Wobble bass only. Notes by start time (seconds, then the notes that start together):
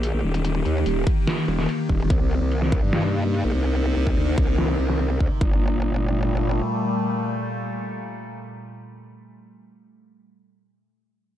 Already playing: A#1
0.14 A#1
0.24 D#1
0.65 D#2
0.86 D#1
1.48 D#1
1.89 D#1
2.10 C2
2.21 C2
2.41 C2
2.83 G2
3.45 A#1
3.55 C2
3.96 C2
4.17 D2
4.38 C2
4.79 C2
5.21 D2
5.41 G1